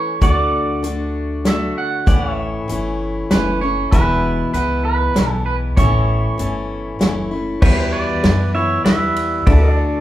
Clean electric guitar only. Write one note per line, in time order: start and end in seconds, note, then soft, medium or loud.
0.00 0.22 C#5 medium
0.22 1.47 D5 medium
1.47 1.77 E5 medium
1.78 2.35 F#5 medium
3.31 3.59 B4 medium
3.61 3.91 C#5 medium
3.91 4.50 B4 medium
4.54 4.84 B4 medium
4.85 5.29 B4 loud
5.29 5.42 A4 loud
5.46 5.54 B4 medium
5.77 6.96 C#5 medium